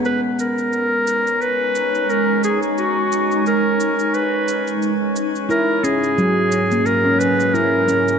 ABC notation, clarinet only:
X:1
M:4/4
L:1/8
Q:"Swing 16ths" 1/4=88
K:G#m
V:1 name="Clarinet"
B A3 B2 A G | F2 A2 B2 z2 | A G3 A B A2 |]